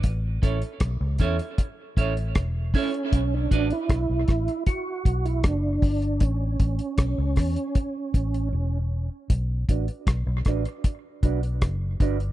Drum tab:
HH |x-xxx-xxx-xxx-ox|x-xxx-xxx-xxx-ox|x-xxx-oxx-xx----|x-xxx-xxx-xxx-xx|
SD |----r-------r---|----r-r-----r---|----r-r---------|----r-r-----r---|
BD |o-o-o-o-o-o-o-o-|o-o-o-o-o-o-o-o-|o-o-o-o-o-o-----|o-o-o-o-o-o-o-o-|